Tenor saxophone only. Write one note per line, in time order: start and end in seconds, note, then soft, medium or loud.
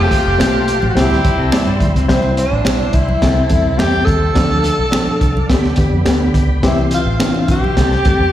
0.00 0.89 G4 medium
0.90 0.99 F#4 medium
0.97 1.53 G4 medium
2.11 2.41 C4 medium
2.39 2.96 D4 medium
2.95 3.80 E4 medium
3.79 4.06 G4 medium
4.05 5.77 A4 loud
6.68 6.79 E4 medium
6.94 7.46 F4 medium
7.51 8.32 G4 medium